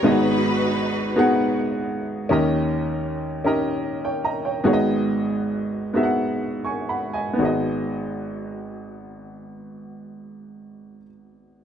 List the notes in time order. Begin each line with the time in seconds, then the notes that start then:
0.03 G#1 G#2 B3 D#4 F#4 G#4 D#5
0.07 D#4 B4
1.16 B3 D#4 F#4 G#4 F#5
2.29 D#2 D#3 C#4 D#4 G4 A#4 D#5
3.44 C#4 D#4 G4 A#4 D#5
4.05 C#5 G5
4.25 D#5 A#5
4.45 C#5 G5
4.64 G#1 G#2 B3 D#4 F#4 G#4 C#5
4.73 D#5
5.94 B3 D#4 F#4 G#4 E5
6.03 F#5
6.65 G#5 C#6
6.89 F#5 B5
7.13 D#5 G#5
7.33 B3 D#4
7.39 G#1 F#4 G#4
7.45 D#5